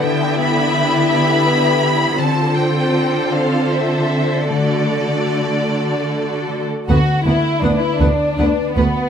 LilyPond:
<<
  \new Staff \with { instrumentName = "Violin section" } { \time 6/8 \key b \minor \tempo 4. = 53 g''8 b''4 b''4. | a''8 g''4 f''8 e''4 | d''2~ d''8 r8 | fis''8 fis''8 fis''8 fis''8 fis''8 fis''8 | }
  \new Staff \with { instrumentName = "Harp" } { \time 6/8 \key b \minor <d b'>8 b8 e'8 g'8 b'8 g'8 | d8 c'8 f'8 a'8 c''8 a'8 | d8 d'8 fis'8 a'8 d''8 a'8 | d8 d'8 b'8 d''8 b'8 fis'8 | }
  \new Staff \with { instrumentName = "Violin section" } { \time 6/8 \key b \minor << { e''2. | c''2. | d''2~ d''8 r8 | fis'8 e'8 d'16 e'16 d'4 b8 | } \\ { g'2. | a'2.~ | a'2~ a'8. r16 | r2. | } >> }
  \new Staff \with { instrumentName = "Viola section" } { \time 6/8 \key b \minor <b e'>2. | <c' f'>2. | <a fis'>2~ <a fis'>8 r8 | <b b'>8 <b b'>8 <b b'>8 <b b'>8 <b b'>8 <b b'>8 | }
  \new Staff \with { instrumentName = "Cello section" } { \clef bass \time 6/8 \key b \minor d2. | d2.~ | d2~ d8. r16 | d,8 d,8 d,8 d,8 d,8 d,8 | }
  \new Staff \with { instrumentName = "Double bass section" } { \clef bass \time 6/8 \key b \minor r2. | r2. | r2. | d,8 d,8 d,8 d,8 d,8 d,8 | }
>>